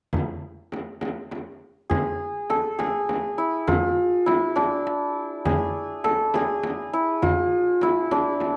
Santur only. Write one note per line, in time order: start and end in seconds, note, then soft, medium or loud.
1.90 2.56 G#4 medium
2.50 2.85 A4 medium
2.79 5.45 G#4 medium
3.38 3.73 E4 medium
3.67 4.32 F4 medium
4.26 6.93 E4 medium
4.56 8.11 D4 medium
5.45 6.10 G#4 medium
6.04 6.41 A4 medium
6.35 8.57 G#4 medium
6.93 7.28 E4 medium
7.22 7.89 F4 medium
7.83 8.57 E4 medium
8.12 8.57 D4 medium